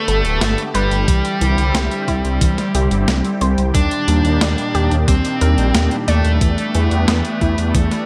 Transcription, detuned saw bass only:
0.08 0.22 G1 medium
0.25 0.39 D1 medium
0.41 0.55 G1 loud
0.75 0.89 G1 medium
0.91 1.05 G1 medium
1.08 1.22 C2 loud
1.41 1.55 C2 medium
1.58 1.72 C2 medium
1.75 1.89 C2 loud
2.08 2.22 C2 medium
2.24 2.39 C2 medium
2.41 2.55 C2 loud
2.75 2.89 C2 medium
2.91 3.06 G1 medium
3.08 3.22 C2 loud
3.41 3.55 C2 medium
3.58 3.72 C2 medium
3.75 3.89 D#2 loud
4.08 4.22 D#2 medium
4.25 4.39 D#2 medium
4.41 4.55 D#2 medium
4.75 4.89 D#2 medium
4.92 5.06 D#2 medium
5.08 5.22 D#2 loud
5.42 5.56 D#2 loud
5.58 5.72 A#1 medium
5.75 5.89 D#2 loud
6.08 6.22 D#2 medium
6.25 6.39 D#2 medium
6.41 6.55 E2 loud
6.75 6.89 E2 medium
6.91 7.06 E2 medium
7.08 7.22 E2 medium
7.41 7.55 E2 medium
7.58 7.72 E2 medium
7.75 7.89 E2 loud

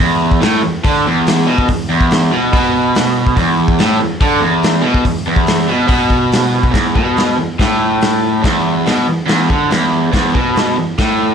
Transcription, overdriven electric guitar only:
0.00 0.41 E2 loud
0.41 0.62 A2 loud
0.62 0.79 E2 medium
0.84 1.05 D3 loud
1.06 1.47 E2 medium
1.46 1.67 B2 loud
1.68 1.85 E2 medium
1.89 2.31 E2 loud
2.31 2.51 B2 loud
2.53 3.36 B2 loud
3.37 3.78 E2 loud
3.80 3.99 A2 loud
4.00 4.16 E2 medium
4.21 4.41 D3 loud
4.40 4.82 E2 loud
4.81 5.03 B2 loud
5.05 5.22 E2 medium
5.27 5.68 E2 medium
5.68 5.86 B2 loud
5.87 6.72 B2 loud
6.71 6.93 E2 medium
6.95 7.37 B2 medium
7.37 7.54 E2 medium
7.59 8.43 A2 loud
8.43 8.85 E2 loud
8.86 9.07 B2 medium
9.08 9.25 E2 medium
9.27 9.48 E2 loud
9.50 9.70 D3 medium
9.70 10.11 E2 loud
10.12 10.33 E2 loud
10.34 10.76 B2 loud
10.78 10.94 E2 medium
10.99 11.35 A2 loud

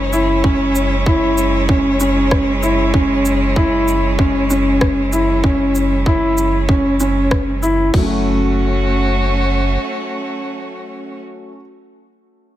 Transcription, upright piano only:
0.13 0.37 E4 medium
0.44 0.92 C#4 medium
1.07 1.55 E4 medium
1.69 1.93 C#4 medium
2.01 2.49 C#4 medium
2.63 2.87 E4 medium
2.94 3.43 C#4 loud
3.57 4.05 E4 medium
4.19 4.43 C#4 medium
4.50 4.99 C#4 medium
5.13 5.37 E4 medium
5.44 5.92 C#4 medium
6.06 6.55 E4 medium
6.69 6.93 C#4 medium
7.00 7.49 C#4 medium
7.62 7.87 E4 medium
7.94 11.47 F#3 medium
7.94 11.51 A3 medium
8.02 11.55 C#4 medium
8.06 11.59 F#4 medium

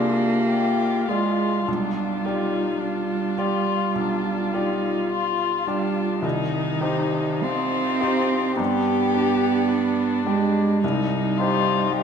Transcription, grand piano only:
0.00 1.69 C2 soft
0.00 1.05 F4 soft
0.00 1.06 G#4 soft
0.00 1.06 D5 soft
1.09 1.63 F4 soft
1.09 1.63 G#4 soft
1.09 1.64 D5 soft
1.68 2.23 B1 soft
2.25 3.34 F4 soft
2.25 3.34 G4 soft
2.25 3.35 D5 soft
3.37 3.91 F4 soft
3.37 3.92 G4 soft
3.37 3.92 D5 soft
3.95 4.52 B1 soft
4.53 5.64 F4 soft
4.53 5.64 G4 soft
4.53 5.65 D5 soft
5.67 6.19 F4 soft
5.67 6.20 G4 soft
5.67 6.20 D5 soft
6.22 6.80 C2 soft
6.81 7.97 D#4 soft
6.81 7.97 G4 soft
6.81 7.98 C5 soft
8.00 8.54 D#4 soft
8.00 8.54 G4 soft
8.00 8.54 C5 soft
8.57 9.12 G2 soft
9.14 10.23 D4 soft
9.14 10.23 G4 soft
9.14 10.23 D5 soft
10.26 10.79 D4 soft
10.26 10.78 G4 soft
10.26 10.79 D5 soft
10.84 11.37 C2 soft
11.39 12.03 D#4 soft
11.39 12.03 G4 soft
11.39 12.03 C5 soft

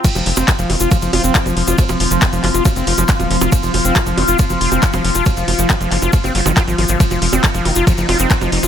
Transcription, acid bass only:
0.04 0.08 F3 loud
0.15 0.24 F3 medium
0.26 0.30 F3 medium
0.37 0.46 C4 medium
0.48 0.52 F3 loud
0.59 0.71 F3 loud
0.70 0.76 D#3 medium
0.81 0.90 F4 loud
0.91 0.97 F3 medium
1.02 1.11 F3 medium
1.13 1.22 F4 medium
1.24 1.33 C4 medium
1.35 1.39 F#3 medium
1.46 1.55 F3 loud
1.57 1.63 F3 medium
1.68 1.77 F4 loud
1.78 1.82 F3 loud
1.89 1.98 F3 medium
2.00 2.04 F3 medium
2.11 2.20 F3 loud
2.22 2.28 F3 loud
2.33 2.42 F3 loud
2.44 2.50 F3 medium
2.54 2.64 F4 loud
2.65 2.69 F3 loud
2.76 2.85 C4 medium
2.87 2.93 F3 medium
2.98 3.04 F3 medium
3.09 3.12 F#3 medium
3.20 3.29 F3 loud
3.31 3.37 F3 medium
3.41 3.51 F4 loud
3.52 3.56 F3 loud
3.63 3.72 F3 medium
3.74 3.78 F3 medium
3.85 3.94 C4 medium
3.96 3.99 F3 loud
4.07 4.19 F3 loud
4.17 4.24 D#3 medium
4.28 4.37 F4 loud
4.39 4.45 F3 medium
4.50 4.59 F3 medium
4.61 4.70 F4 medium
4.72 4.81 C4 medium
4.83 4.86 F#3 medium
4.94 5.03 F3 loud
5.05 5.11 F3 medium
5.15 5.24 F4 loud
5.26 5.30 F3 loud
5.37 5.46 F3 medium
5.48 5.52 F3 medium
5.59 5.68 F3 loud
5.70 5.76 F3 loud
5.81 5.90 F3 loud
5.91 5.98 F3 medium
6.02 6.11 F4 loud
6.13 6.17 F3 loud
6.24 6.33 C4 medium
6.35 6.41 F#3 medium
6.46 6.52 D#3 loud
6.57 6.63 F4 loud
6.68 6.77 F3 medium
6.78 6.84 F3 medium
6.89 6.98 F3 medium
7.00 7.04 F3 loud
7.11 7.20 F3 medium
7.22 7.26 F3 medium
7.33 7.42 C4 medium
7.44 7.47 F3 loud
7.55 7.67 F3 loud
7.65 7.71 D#3 medium
7.76 7.85 F4 loud
7.87 7.93 F3 medium
7.98 8.07 F3 medium
8.09 8.18 F4 medium
8.20 8.29 C4 medium
8.31 8.34 F#3 medium
8.41 8.51 F3 loud
8.52 8.58 F3 medium
8.63 8.68 F4 loud

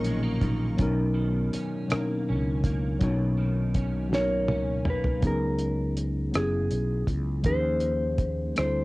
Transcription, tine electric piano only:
0.00 0.81 B2 medium
0.00 0.77 F#3 medium
0.00 0.54 A#3 medium
0.00 0.80 C#4 medium
0.00 0.80 D#4 medium
0.00 0.80 A#4 loud
0.77 1.65 F#3 medium
0.77 1.65 B3 medium
0.77 1.66 C#4 medium
0.77 1.67 D#4 medium
0.82 1.67 A#4 medium
1.88 2.76 B2 medium
1.88 2.75 F#3 medium
1.88 2.77 C#4 medium
1.88 1.96 D4 medium
1.92 2.78 A#4 medium
1.97 2.80 D#4 medium
2.99 3.87 B2 medium
2.99 3.87 F#3 medium
2.99 3.88 C#4 medium
2.99 3.89 D#4 medium
3.04 3.89 C#5 loud
4.09 4.98 B2 medium
4.09 4.97 F#3 medium
4.09 4.99 C#4 medium
4.09 4.99 D#4 medium
4.14 4.19 A#4 medium
4.21 5.03 A#4 medium
5.20 6.08 F#3 medium
5.20 6.09 B3 medium
5.20 6.10 C#4 medium
5.20 6.10 D#4 medium
5.25 6.11 G#4 medium
6.31 7.19 F#3 medium
6.31 7.20 B3 medium
6.31 7.21 C#4 medium
6.31 7.21 E4 medium
6.36 6.41 G4 soft
6.42 7.25 G#4 medium
7.43 8.31 F3 medium
7.43 8.31 A#3 medium
7.43 8.32 C#4 medium
7.43 8.33 D#4 medium
7.48 8.33 G#4 medium
8.55 8.84 G3 medium
8.55 8.84 C4 medium
8.55 8.84 D4 medium
8.55 8.84 E4 medium
8.59 8.64 G#4 soft
8.66 8.84 A4 medium

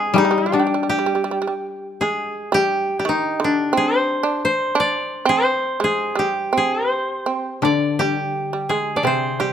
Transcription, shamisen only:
0.00 0.15 G#3 medium
0.16 0.23 G3 medium
0.25 0.30 G3 soft
0.31 0.37 G3 medium
0.38 0.45 G3 soft
0.46 0.51 G3 soft
0.52 0.58 G3 soft
0.60 0.65 G3 soft
0.67 0.73 G3 soft
0.74 0.82 G3 soft
0.83 0.88 G3 soft
0.90 0.97 G3 soft
0.99 1.05 G3 soft
1.06 1.13 G3 soft
1.15 1.22 G3 soft
1.24 1.30 G3 soft
1.31 1.38 G3 soft
1.42 1.46 G3 soft
1.47 1.54 G3 soft
2.02 2.50 G#3 soft
2.52 2.95 G3 medium
3.00 3.06 G3 soft
3.05 3.37 D#3 medium
3.40 3.71 D3 medium
3.73 4.21 C4 medium
4.23 4.72 D4 medium
4.75 5.23 D4 medium
5.25 5.76 C4 medium
5.80 6.14 G#3 medium
6.15 6.50 G3 medium
6.53 7.23 C4 medium
7.26 7.61 C4 medium
7.63 7.97 D4 medium
8.01 8.50 G3 medium
8.53 8.70 G3 soft
8.70 8.97 G#3 medium
8.97 9.04 D4 soft
9.05 9.37 C4 medium
9.40 9.53 G3 medium

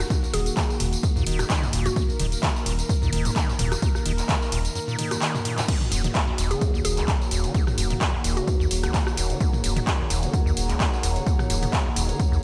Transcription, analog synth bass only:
0.34 0.50 D#1 loud
0.80 0.96 D#1 loud
1.16 1.23 D#2 medium
1.27 1.43 D#1 loud
1.73 1.89 D#1 medium
2.20 2.36 D#1 loud
2.66 2.82 D#1 loud
3.02 3.09 D#2 medium
3.13 3.29 D#1 loud
3.59 3.75 D#1 medium
4.05 4.22 D#1 loud
4.52 4.68 D#1 loud
5.92 6.08 D#1 loud
6.38 6.55 D#1 loud
6.74 6.81 D#2 medium
6.85 7.01 D#1 loud
7.31 7.48 D#1 medium
7.78 7.94 D#1 loud
8.24 8.41 D#1 medium
8.60 8.67 D#2 medium
8.71 8.87 D#1 loud
9.17 9.34 D#1 medium
9.64 9.80 D#1 loud
10.10 10.27 D#1 loud
10.46 10.53 D#2 medium
10.57 10.73 D#1 loud
11.03 11.20 D#1 medium
11.50 11.66 D#1 loud
11.96 12.13 D#1 loud
12.32 12.39 D#2 medium

